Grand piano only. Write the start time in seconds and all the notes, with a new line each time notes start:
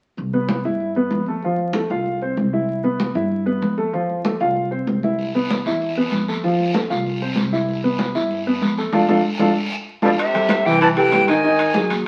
0.33 B3 B4
0.65 E4 E5
0.96 B3 B4
1.28 A3 A4
1.44 F3 F4
1.75 A3 A4
1.91 F4 F5
2.22 C4 C5
2.53 E4 E5
2.84 B3 B4
3.15 E4 E5
3.46 B3 B4
3.78 A3 A4
3.93 F3 F4
4.25 A3 A4
4.41 F4 F5
4.71 C4 C5
5.04 E4 E5
5.35 B3 B4
5.67 E4 E5
5.97 B3 B4
6.28 A3 A4
6.44 F3 F4
6.74 A3 A4
6.90 F4 F5
7.22 C4 C5
7.52 E4 E5
7.84 B3 B4
8.15 E4 E5
8.47 B3 B4
8.78 A3 A4
8.93 D4 F4 A4
9.09 D4 F4 A4
9.40 D4 F4 A4
10.03 D4 F4 A4
10.34 G3 G4 A4
10.66 E3 E4 E5
10.97 G3 G4 A4
11.28 D#3 D#4 D#5
11.44 D#3 D#4 D#5
11.75 F#3 F#4 G#4